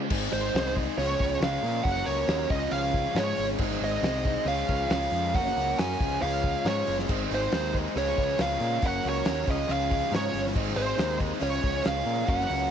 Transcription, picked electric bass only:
0.11 G#1
0.33 G#1
0.54 C2
0.98 C#2
1.21 C#2
1.40 C#2
1.63 A#2
1.86 F#1
2.07 C#2
2.28 D#2
2.50 C#2
2.72 C#2
3.15 G#2
3.38 G#1
3.60 G#1
3.81 G#1
4.02 C2
4.45 C#2
4.70 C#2
4.90 C#2
5.12 F2
5.35 F#1
5.57 C#2
5.79 F#2
6.00 C#2
6.22 C#2
6.65 G#2
6.88 F#1
7.09 G#1
7.31 G#1
7.53 D#2
7.96 C#2
8.18 C#2
8.40 C#2
8.60 A#2
8.83 F#1
9.05 C#2
9.26 D#2
9.48 C#2
9.69 C#2
10.12 G#2
10.33 G1
10.56 G#1
10.76 G#1
10.99 D#2
11.42 C#2
11.64 C#2
11.85 C#2
12.06 A#2
12.29 F#1
12.50 C#2

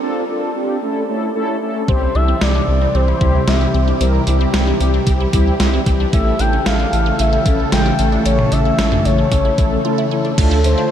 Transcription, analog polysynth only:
0.02 C4 D4 F4 A4
0.29 C4 D4 F4 A4
0.56 C4 D4 F4 G4
0.82 A3 C#4 E4 A4
1.09 A3 C#4 E4 A4
1.35 A3 C#4 E4 A4
1.62 A3 C#4 E4 A4
1.89 G3 C4 E4 G4
2.15 G3 C4 E4 G4
2.42 G3 C4 E4 G4
2.68 G3 C4 E4 A#4
2.95 G3 C4 E4 G4
3.21 G3 C4 E4 G4
3.48 G3 C4 E4 G4
3.74 G3 C4 E4 G4
4.01 G3 C4 E4 A#4
4.27 G3 C4 E4 G4
4.54 G3 C4 E4 G4
4.80 G3 C4 E4 G4
5.07 G3 C4 E4 G4
5.34 G3 C4 E4 G4
5.60 G3 C4 E4 G4
5.86 G3 C4 E4 G4
6.13 A3 C#4 E4 A4
6.40 A3 C#4 E4 A4
6.66 A3 C#4 E4 A4
6.93 A3 C#4 E4 G4
7.19 A3 C#4 E4 A4
7.46 A3 C#4 E4 A4
7.73 A3 C#4 E4 G4
7.99 A3 C#4 E4 A4
8.26 A3 C#4 E4 A4
8.52 A3 C#4 E4 A4
8.79 A3 C#4 E4 A4
9.05 A3 C#4 E4 A4
9.32 A3 C#4 E4 A4
9.58 A3 C#4 E4 A4
9.85 A3 C#4 E4 A4
10.12 A3 C#4 E4 A4
10.38 A3 D4 F4 A4
10.65 A3 D4 F4 A4

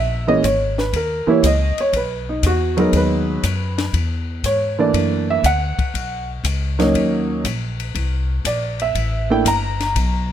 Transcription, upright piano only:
Already playing: E5
0.27 E3 G#3 A#3 C#4 D#5
0.45 C#5
0.79 B4
0.96 A#4
1.27 E3 G3 A#3 E4 C#5
1.46 D#5
1.81 C#5
1.97 B4
2.29 D#4
2.46 F#4
2.77 F#3 G#3 B3 D#4 A#4
2.92 A#4
2.96 B4
4.46 C#5
4.79 E3 A3 A#3 D4 D5
5.30 E5
5.46 F#5
6.79 F#3 A#3 C#4 D#4
8.47 D5
8.82 E5
9.30 A3 A#3 D4 E4 G5
9.48 A#5

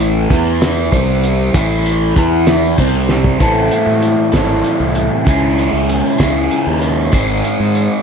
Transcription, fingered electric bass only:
Already playing: A1
0.31 E2
0.92 C2
1.54 A1
2.17 E2
2.79 C2
3.41 A1
3.87 A2
4.34 G#1
4.80 C2
5.26 C#2
5.73 C#2
6.20 C#2
6.67 D#2
7.14 G#1
7.60 G#2

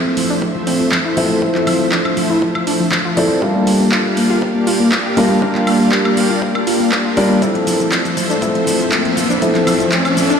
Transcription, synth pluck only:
0.05 F3
0.17 F3
0.30 D4
0.42 F3
0.55 F3
0.67 C4
0.80 F3
0.92 F3
1.05 E4
1.17 F3
1.30 F3
1.42 F4
1.55 F3
1.67 F3
1.80 F3
1.92 D4
2.05 F3
2.17 F3
2.30 E4
2.42 F3
2.55 F3
2.67 D4
2.80 F3
2.92 F3
3.05 F4
3.17 F3
3.30 F3
3.42 G4
3.55 A#3
3.67 A#3
3.80 A#3
3.92 F4
4.05 A#3
4.17 A#3
4.30 F4
4.42 A#3
4.55 A#3
4.67 F4
4.80 A#3
4.92 A#3
5.05 G4
5.17 A#3
5.30 A#3
5.42 A#4
5.55 A#3
5.67 A#3
5.80 A#3
5.92 G4
6.05 A#3
6.17 A#3
6.30 F4
6.42 A#3
6.55 A#3
6.67 F4
6.80 A#3
6.92 A#3
7.05 F4
7.17 A#3
7.30 A#3
7.42 E4
7.55 F3
7.67 F3
7.80 F3
7.92 C4
8.05 F3
8.17 F3
8.30 D4
8.42 E4
8.55 F3
8.67 F3
8.80 F3
8.92 C4
9.05 F3
9.17 F3
9.30 D4
9.42 E4
9.55 F3
9.67 F3
9.80 F3
9.92 C4
10.05 F3
10.17 F3
10.30 D4

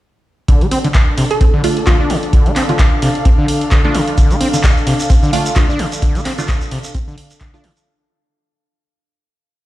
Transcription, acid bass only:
0.48 D3
0.61 A3
0.71 C4
0.85 D3
1.18 C3
1.41 C4
1.54 D3
1.87 D3
2.00 D4
2.10 C3
2.33 D3
2.46 A3
2.56 C4
2.69 D3
3.02 C3
3.25 C4
3.38 D3
3.71 D3
3.84 D4
3.95 C3
4.18 D3
4.31 A3
4.41 C4
4.54 D3
4.87 C3
5.10 C4
5.23 D3
5.56 D3
5.69 D4
5.79 C3
6.02 D3
6.15 A3
6.25 C4
6.38 D3
6.72 C3
6.95 C4
7.08 D3
7.41 D3
7.54 D4
7.64 C3

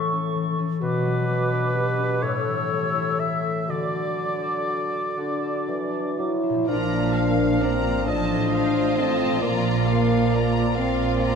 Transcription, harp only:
Already playing: A2 E3 C#4 E4 A4
0.13 C#4
0.35 E3
0.58 C#4
0.81 B2
1.05 F#3
1.28 B3
1.53 D4
1.76 F#4
1.99 D4
2.23 A2
2.46 E3
2.71 G3
2.95 E4
3.19 A4
3.44 E4
3.69 D3
3.93 F#3
4.18 D4
4.42 A4
4.67 F#4
4.92 A4
5.17 F#4
5.42 A4
5.68 F#3
5.93 D4
6.19 F#3
6.43 D4
6.50 A#2
6.54 F3
6.58 D4
6.63 A#4
7.88 A2
7.93 F3
7.97 D#4
8.02 C5
9.25 A#2
9.29 F3
9.34 D4
9.38 D5

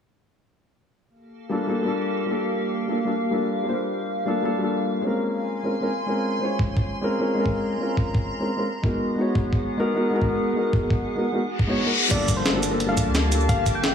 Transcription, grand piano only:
1.49 G3 A#3 D4 F4 A4
1.67 G3 A#3 D4 F4 A4
1.83 G3 A#3 D4
1.87 F4 A4
2.26 G3 A#3 D4
2.30 F4 A4
2.88 G3 A#3 D4 F4 A4
3.05 G3 A#3 D4 F4 A4
3.31 G3 A#3 D4 F4 A4
3.64 G3 A#3 D4
3.68 F4 C5
4.25 G3 A#3 D4 F4 A4
4.43 G3 A#3 D4 F4 A4
4.58 G3 A#3 D4 F4
4.64 A4
5.01 G#3 C4 C#4
5.05 F4 A#4
5.63 G#3 C4 C#4 F4 A#4
5.81 G#3 C4 C#4 F4 A#4
6.06 G#3 C4 C#4 F4 A#4
6.40 G#3 C#4 F4 C5
6.45 C#5
7.01 G#3 C4 C#4 F4 A#4
7.19 G#3 C4 C#4 F4 A#4
7.35 G#3 C4 C#4
7.39 F4 A#4
7.78 G#3 C4 C#4
7.82 F4 A#4
8.39 G#3 C4 C#4 F4 A#4
8.57 G#3 C4 C#4 F4 A#4
8.82 G#3 B3 D#4 F#4 A#4
9.16 G#3 B3 D#4
9.20 F#4 C#5
9.77 G#3 B3 D#4 F#4 A#4
9.94 G#3 B3 D#4 F#4 A#4
10.10 G#3 B3 D#4
10.14 F#4 A#4
10.53 G#3 B3 D#4
10.57 F#4 A#4
11.15 G#3 B3 D#4 F#4 A#4
11.32 G#3 B3 D#4 F#4 A#4
11.67 G#3 B3 D#4 F#4 C#5
11.84 G#3 B3 D#4 F#4 A#4
12.09 G3 A#3 D4
12.13 F4 A4
12.53 G3 A#3 D4 F4 A4
12.70 G3 A#3 D4 F4 A4
12.86 G3 A#3 D4
12.90 F4 A4
13.29 G3 A#3 D4
13.33 F4 A4
13.91 G3 A#3

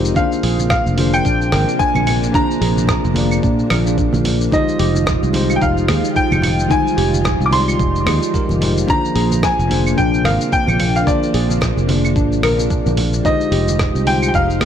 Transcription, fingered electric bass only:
Already playing: F1
0.43 A#1
0.86 F1
1.25 A#1
1.52 G#1
1.95 A#1
2.61 A#1
3.05 F1
3.43 A#2
3.71 A#1
4.14 A#1
4.80 F1
5.23 C2
5.62 F1
5.89 D#2
6.32 F1
6.98 F1
7.40 C2
7.80 F1
8.06 D#2
8.50 F1
9.16 A#1
9.59 F1
9.98 A#1
10.24 G#1
10.68 A#1
11.34 A#1
11.77 F1
12.16 G#1
12.43 A#1
12.86 A#1
13.52 F1
13.95 C2
14.34 F1
14.61 D#2

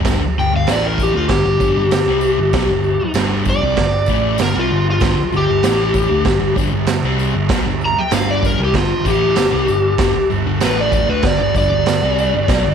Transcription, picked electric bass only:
0.06 G1
0.38 G1
0.54 G1
0.68 A1
1.14 D2
1.29 G1
1.45 G1
1.60 G1
1.77 G1
2.07 C2
2.38 G1
2.53 B1
2.67 G1
2.99 muted picked electric bass stroke
3.14 G1
3.61 C2
3.78 G1
4.08 A1
4.40 G1
4.55 C2
4.72 G1
5.02 G1
5.33 G1
5.50 G1
5.67 A1
6.11 D2
6.25 G1
6.41 G1
6.56 G1
6.71 G1
7.03 C2
7.34 G1
7.49 B1
7.65 G1
8.11 G1
8.59 C2
8.75 G1
9.05 A1
9.37 G1
9.53 C2
9.70 G1
9.98 G1
10.31 G1
10.47 G1
10.63 A1
11.10 D2
11.23 G1
11.41 G1
11.54 G1
11.70 G1
12.02 C2
12.34 G1
12.49 B1
12.65 G1

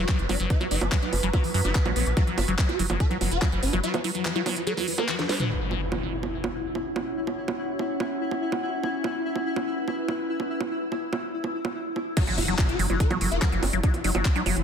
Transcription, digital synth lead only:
0.09 F#3
0.19 F#3
0.29 D4
0.40 F#3
0.50 E4
0.61 F#3
0.71 E4
0.81 F#3
0.92 F#3
1.02 E4
1.13 F#3
1.23 F#3
1.33 F#4
1.44 F#3
1.54 F#3
1.65 E4
1.75 F#3
1.86 F#3
1.96 C#4
2.06 F#3
2.17 F#4
2.27 F#3
2.38 F#4
2.48 F#3
2.58 F#3
2.69 F#4
2.79 F#3
2.90 F#3
3.00 A#4
3.11 F#3
3.21 F#3
3.31 F#4
3.42 F#3
3.52 F#3
3.63 D4
3.73 F#3
3.84 F#4
3.94 F#3
4.04 F#4
4.15 F#3
4.25 F#3
4.36 F#4
4.46 F#3
4.56 F#3
4.67 A#4
4.77 F#3
4.88 F#3
4.98 B4
5.09 F#3
5.19 F#3
5.29 C#5
5.40 F#3
12.17 F#4
12.27 F#3
12.38 F#4
12.48 F#3
12.58 F#3
12.69 F#4
12.79 F#3
12.90 F#3
13.00 A#4
13.11 F#3
13.21 F#3
13.31 F#4
13.42 F#3
13.52 F#3
13.63 D4
13.73 F#3
13.83 E4
13.94 F#3
14.04 E4
14.15 F#3
14.25 F#3
14.36 E4
14.46 F#3
14.56 F#3

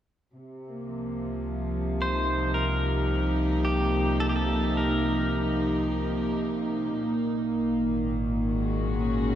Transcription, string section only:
0.34 C3
0.69 A#3
0.84 F3
2.03 D#4
2.61 G4
7.01 A#2
7.80 D#3
8.50 G#3 F#4
9.04 C#4

